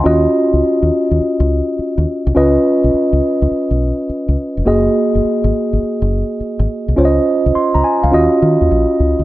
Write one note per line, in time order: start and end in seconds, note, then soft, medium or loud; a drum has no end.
0.04 0.26 D#2 loud
0.04 2.31 C#4 medium
0.04 2.32 F4 medium
0.04 2.32 F#4 medium
0.04 2.33 D#5 medium
0.53 0.60 C#2 medium
0.63 muted fingered electric bass stroke soft
0.83 0.89 D#2 medium
1.11 1.18 D#2 medium
1.21 muted fingered electric bass stroke soft
1.40 1.60 C#2 loud
1.79 muted fingered electric bass stroke medium
1.98 2.05 D#2 medium
2.27 2.33 C2 loud
2.35 2.57 C#2 loud
2.35 4.62 C#4 medium
2.35 4.63 F4 medium
2.35 4.63 B4 medium
2.35 4.64 D#5 medium
2.84 2.91 B1 medium
2.94 muted fingered electric bass stroke soft
3.13 3.20 C#2 medium
3.42 3.49 C#2 medium
3.51 muted fingered electric bass stroke soft
3.71 3.91 B1 medium
4.09 muted fingered electric bass stroke medium
4.28 4.35 C#2 medium
4.57 4.64 F1 medium
4.65 4.87 F#1 loud
4.65 6.93 A#3 medium
4.65 6.93 F#4 medium
4.65 6.94 G#4 medium
4.65 6.94 D#5 medium
5.15 5.22 F#1 medium
5.25 muted fingered electric bass stroke soft
5.44 5.51 G#1 loud
5.73 5.80 G#1 medium
5.83 muted fingered electric bass stroke soft
6.02 6.22 F#1 medium
6.40 muted fingered electric bass stroke medium
6.59 6.66 G#1 loud
6.88 6.95 C2 medium
6.96 7.18 C#2 loud
6.96 8.10 C#4 medium
6.96 8.10 F4 medium
6.96 8.11 C5 medium
6.96 7.07 C#5 medium
7.05 8.13 D#5 medium
7.46 7.53 C2 medium
7.55 7.74 C6 medium
7.55 muted fingered electric bass stroke soft
7.75 7.82 C#2 medium
7.75 7.84 A#5 medium
7.84 8.02 G#5 medium
8.03 8.10 C#2 medium
8.03 8.31 F5 medium
8.12 8.27 D#2 loud
8.12 9.24 C#4 medium
8.12 9.24 F4 medium
8.12 9.24 F#4 medium
8.12 9.24 D#5 loud
8.42 8.56 D#3 loud
8.61 8.68 D#2 medium
8.71 8.85 A#1 loud
9.00 9.13 C#2 medium
9.19 9.24 D2 medium